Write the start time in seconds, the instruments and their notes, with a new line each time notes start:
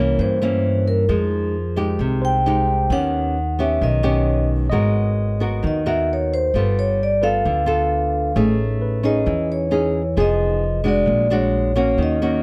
Already playing: upright bass C2, nylon-string guitar C3 E3 A#3 C#4, tine electric piano A#4, vibraphone C#5
0.19 upright bass G2, nylon-string guitar G2, vibraphone C5
0.42 nylon-string guitar E3 A#3 C#4
0.88 vibraphone A#4
1.09 upright bass F2, nylon-string guitar F3 G#3 D#4, vibraphone G#4
1.76 nylon-string guitar G#3 D#4 G4
1.99 upright bass C2, nylon-string guitar C3
2.22 tine electric piano C5, vibraphone G5
2.46 nylon-string guitar G#3 D#4 G4
2.90 upright bass D#2, nylon-string guitar D#3 B3 C#4 G4, vibraphone F#5
3.59 nylon-string guitar B3 C#4 G4, vibraphone E5
3.81 upright bass B1, nylon-string guitar D#3, vibraphone D#5
4.03 nylon-string guitar B3 C#4 G4, tine electric piano C#5
4.70 upright bass G#1, nylon-string guitar G#3 B3 F#4 A#4, tine electric piano D#5
5.40 nylon-string guitar B3 F#4 A#4
5.63 upright bass D#2, nylon-string guitar D#3
5.67 vibraphone D#5
5.86 nylon-string guitar B3 F#4 A#4, vibraphone E5
6.13 vibraphone C#5
6.34 vibraphone C5
6.54 upright bass G1, nylon-string guitar G3 B3 F4 A4
6.59 vibraphone B4
6.79 vibraphone C#5
7.03 vibraphone D5
7.22 nylon-string guitar B3 F4 A4, tine electric piano B4, vibraphone F5
7.45 upright bass D2, nylon-string guitar D3
7.66 nylon-string guitar B3 F4 A4
8.36 upright bass A1, nylon-string guitar A3 C#4 D#4 G#4
8.82 tine electric piano B4
9.03 nylon-string guitar C#4 D#4 G#4, vibraphone D#5
9.26 upright bass E2, nylon-string guitar E3
9.52 vibraphone C#5
9.71 nylon-string guitar C#4 D#4 G#4
10.17 upright bass F1, nylon-string guitar F3 B3 D#4 G#4, tine electric piano G#4, vibraphone D#5
10.84 nylon-string guitar G#3 D4 F#4
10.88 vibraphone D5
11.06 upright bass A#1, nylon-string guitar A#2
11.30 nylon-string guitar G#3 D4 F#4, vibraphone C#5
11.75 nylon-string guitar A#3 C#4 F#4
11.98 upright bass D#2, nylon-string guitar D#3
12.03 vibraphone D#5
12.22 nylon-string guitar A#3 C#4 F#4